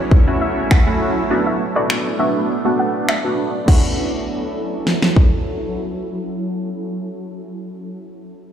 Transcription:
Already playing: F#3 A3 C#4 E4 F#4 C#5
0.11 kick
0.27 A3 C#4 E4 F#4
0.41 E5
0.71 F#5, finger snap, kick
0.87 A3 C#4 E4 F#4
1.30 A3 B3 D4 F#4
1.46 E5
1.76 A3 B3 D4 F#4 D5
1.90 finger snap
2.19 A3 B3 D4 F#4 E5
2.65 A3 B3 D4 F#4
2.79 F#5
3.09 E5, finger snap
3.24 A3 B3 D4 F#4
3.66 F#3 A3 C#4 E4 A4 F#5, kick, crash
3.70 F#4
4.87 snare
5.02 snare
5.16 kick

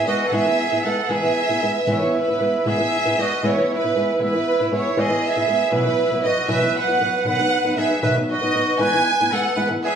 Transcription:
0.07 G#3 B3 E4 F#4 B4 D#5
0.26 A4 F#5
0.31 E3 G#3 B3 E4 G#4 B4 E5
0.47 B3 E4 B4
0.72 B3 E4 B4
0.83 G#3 B3 E4 A4 B4 F#5
1.09 E3 G#3 B3 E4 G#4 B4 E5
1.23 B3 E4 B4
1.49 B3 E4 B4
1.63 G#3 B3 E4 B4
1.87 E3 G#3 B3 E4 B4
1.91 C#5
2.01 B3 E4 B4
2.17 E4 B4
2.28 B3 E4 B4
2.40 G#3 B3 E4 B4
2.65 E3 G#3 B3 E4 G#4 B4 E5
2.78 B3 E4 B4
3.05 B3 E4 B4
3.17 G#3 B3 E4 F#4 B4 D#5
3.43 E3 G#3 B3 E4 B4 C#5
3.58 B3 E4 B4
3.73 E4 B4
3.84 B3 E4 B4
3.95 G#3 B3 E4 B4
4.19 E3 G#3 B3 E4 B4
4.34 B3 E4 B4
4.60 B3 E4 B4
4.71 G#3 B3 E4 B4
4.76 C#5
4.96 E3 G#3 B3 E4 G#4 B4
5.01 D#5
5.10 B3 E4 B4
5.27 G#4 E5
5.36 B3 E4 B4
5.48 G#3 B3 E4 B4
5.71 B2 E3 F#3 B3 E4 B4
5.85 F#3 B3 E4 B4
6.11 F#3 B3 E4 B4
6.24 F#3 B3 E4 F#4 B4 D#5
6.48 B2 E3 F#3 B3 E4 B4 E5
6.61 F#3 B3 E4 B4
6.78 B4 F#5
6.88 F#3 B3 E4 B4
7.00 F#3 B3 E4 B4
7.24 B2 D#3 F#3 B3 D#4 B4 F#5
7.39 F#3 B3 D#4 B4
7.64 F#3 B3 D#4 B4
7.76 F#3 B3 D#4 G#4 B4 E5
8.02 B2 D#3 F#3 B3 D#4 B4 E5
8.16 F#3 B3 D#4 B4
8.31 F#4 D#5
8.41 F#3 B3 D#4 B4
8.54 F#3 B3 D#4 B4
8.79 E3 G#3 B3 E4 B4 G#5
8.93 B3 E4 B4
9.21 B3 E4 B4
9.31 G#3 B3 E4 A4 B4 F#5
9.55 E3 G#3 B3 E4 B4 F#5
9.69 B3 E4 B4
9.84 G#4 E5

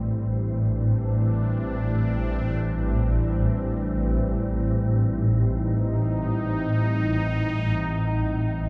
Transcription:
Already playing: A1 A2 E3 G3 C4 D4
4.95 D#4

